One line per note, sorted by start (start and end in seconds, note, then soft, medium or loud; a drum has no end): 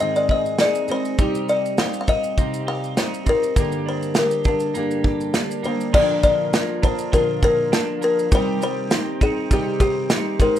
0.00 0.59 G#2 medium
0.00 1.17 D#3 medium
0.00 0.57 G#3 medium
0.00 0.59 C4 medium
0.00 0.59 D#4 medium
0.00 0.60 D#4 medium
0.00 0.28 G#4 medium
0.00 0.60 G#4 medium
0.00 0.17 D#5 medium
0.00 shaker medium
0.16 0.30 D5 medium
0.16 shaker soft
0.29 1.25 G#4 medium
0.29 0.61 D#5 medium
0.29 kick medium
0.46 shaker soft
0.58 0.88 G#3 medium
0.58 0.89 C4 medium
0.58 0.88 D#4 medium
0.58 0.87 G#4 medium
0.58 0.90 D5 medium
0.58 snare loud
0.58 shaker medium
0.75 shaker medium
0.88 1.18 G#3 soft
0.88 1.18 C4 soft
0.88 1.18 D#4 medium
0.88 1.18 G#4 medium
0.88 1.51 C5 medium
0.88 shaker soft
1.05 shaker medium
1.18 1.78 C3 medium
1.18 1.77 G3 medium
1.18 1.77 C4 medium
1.18 1.78 D#4 medium
1.18 1.80 G4 medium
1.18 kick loud
1.18 shaker medium
1.35 shaker soft
1.49 2.07 D#4 medium
1.49 1.80 D5 medium
1.49 shaker medium
1.66 shaker soft
1.77 2.37 G3 medium
1.77 2.37 C4 medium
1.77 2.37 D#4 medium
1.77 2.39 G4 medium
1.77 2.00 F5 medium
1.77 snare loud
1.77 shaker medium
1.94 shaker medium
2.01 2.08 F5 medium
2.08 2.96 D#4 medium
2.08 2.70 D#5 medium
2.08 kick medium
2.08 shaker soft
2.24 shaker soft
2.37 2.97 C3 medium
2.37 2.96 G3 medium
2.37 2.97 C4 medium
2.37 2.97 D#4 medium
2.37 3.00 G4 medium
2.37 kick medium
2.37 shaker medium
2.54 shaker medium
2.67 4.15 G4 medium
2.67 2.98 F5 medium
2.84 shaker soft
2.97 3.26 G3 medium
2.97 3.27 C4 medium
2.97 3.27 D#4 medium
2.97 3.25 G4 medium
2.97 3.28 C5 medium
2.97 snare loud
2.97 shaker medium
3.14 shaker medium
3.26 3.57 C4 soft
3.26 3.57 D#4 medium
3.26 3.56 G4 medium
3.26 3.83 A#4 medium
3.26 kick medium
3.26 shaker medium
3.43 shaker medium
3.56 4.16 G2 medium
3.56 4.75 D3 medium
3.56 4.15 G3 medium
3.56 4.17 A#3 medium
3.56 4.18 D4 medium
3.56 4.17 G4 medium
3.56 kick loud
3.56 shaker medium
3.72 shaker soft
3.86 4.45 D4 medium
3.86 4.18 C5 medium
4.03 shaker soft
4.14 4.46 G3 medium
4.14 4.46 A#3 medium
4.14 5.03 G4 medium
4.14 snare loud
4.14 shaker medium
4.19 4.46 D4 medium
4.19 4.44 G4 medium
4.19 4.31 A#4 medium
4.31 shaker soft
4.44 4.75 A#3 soft
4.44 4.76 D4 medium
4.44 4.75 G4 soft
4.44 5.32 A#4 medium
4.44 kick medium
4.44 shaker soft
4.49 4.75 G3 soft
4.60 shaker soft
4.75 5.35 G2 medium
4.75 5.94 D3 medium
4.75 5.33 G3 medium
4.75 5.35 A#3 medium
4.75 5.36 D4 medium
4.75 5.36 G4 medium
4.75 shaker medium
4.91 shaker medium
5.04 6.00 G4 medium
5.04 kick medium
5.21 shaker soft
5.34 5.64 G3 medium
5.34 5.65 A#3 medium
5.34 5.64 D4 medium
5.34 5.63 G4 medium
5.34 snare loud
5.34 shaker medium
5.51 shaker medium
5.64 5.94 G3 medium
5.64 5.94 A#3 medium
5.64 5.94 D4 medium
5.64 5.94 G4 medium
5.64 5.93 C5 medium
5.64 shaker medium
5.81 shaker medium
5.93 6.53 A#2 medium
5.93 8.29 D3 medium
5.93 6.53 D3 medium
5.93 8.29 F3 medium
5.93 6.51 F3 medium
5.93 8.29 A#3 medium
5.93 6.52 A#3 medium
5.93 6.54 D4 medium
5.93 8.29 F4 medium
5.93 8.28 A#4 medium
5.93 6.54 A#4 medium
5.93 6.22 D5 loud
5.93 kick loud
5.93 crash loud
6.23 7.11 F3 medium
6.23 6.85 D5 medium
6.23 kick medium
6.23 shaker medium
6.52 6.83 F3 medium
6.52 6.83 A#3 medium
6.52 6.83 D4 medium
6.52 6.81 A#4 medium
6.52 snare loud
6.52 shaker medium
6.82 7.12 F3 soft
6.82 7.13 A#3 soft
6.82 7.13 D4 medium
6.82 7.12 A#4 medium
6.82 7.14 C5 medium
6.82 kick medium
6.82 shaker soft
6.99 shaker medium
7.12 7.72 A#2 medium
7.12 7.72 D3 medium
7.12 7.70 F3 medium
7.12 7.71 A#3 medium
7.12 7.73 D4 medium
7.12 7.41 A#4 medium
7.12 7.73 A#4 medium
7.12 kick medium
7.12 shaker medium
7.43 8.00 A#3 medium
7.43 8.03 A#4 loud
7.43 kick medium
7.43 shaker soft
7.71 8.31 F3 medium
7.71 8.32 A#3 medium
7.71 8.32 D4 medium
7.71 8.33 A#4 medium
7.71 snare loud
7.71 shaker medium
8.01 8.38 A#3 medium
8.01 8.33 A#4 medium
8.01 shaker medium
8.19 shaker medium
8.31 8.91 C3 medium
8.31 10.60 D#3 medium
8.31 8.89 G3 medium
8.31 8.92 C4 medium
8.31 10.60 C4 medium
8.31 8.92 D#4 medium
8.31 8.92 G4 medium
8.31 10.60 C5 medium
8.31 8.61 C5 loud
8.31 10.38 G5 medium
8.31 kick loud
8.31 shaker medium
8.61 9.50 G3 medium
8.61 9.23 C5 loud
8.61 shaker medium
8.91 9.20 G3 medium
8.91 9.21 C4 medium
8.91 9.21 D#4 medium
8.91 9.22 G4 medium
8.91 snare loud
8.91 shaker medium
9.21 9.51 C4 soft
9.21 9.51 D#4 soft
9.21 9.52 G#4 medium
9.21 kick medium
9.21 shaker soft
9.50 10.09 C3 medium
9.50 10.08 G3 medium
9.50 10.10 C4 medium
9.50 10.12 D#4 medium
9.50 10.11 G4 medium
9.50 9.80 G4 medium
9.50 kick loud
9.50 shaker medium
9.80 10.60 C4 medium
9.80 10.41 G4 medium
9.80 kick medium
9.80 shaker soft
10.09 10.39 G3 medium
10.09 10.40 C4 medium
10.09 10.38 D#4 medium
10.09 10.39 G4 medium
10.09 snare loud
10.09 shaker medium
10.39 10.60 G#3 medium
10.39 10.60 A#3 medium
10.39 10.60 C4 medium
10.39 10.60 D#4 medium
10.39 10.60 G#4 medium
10.39 10.60 A#4 medium
10.39 kick loud
10.39 shaker medium
10.56 shaker medium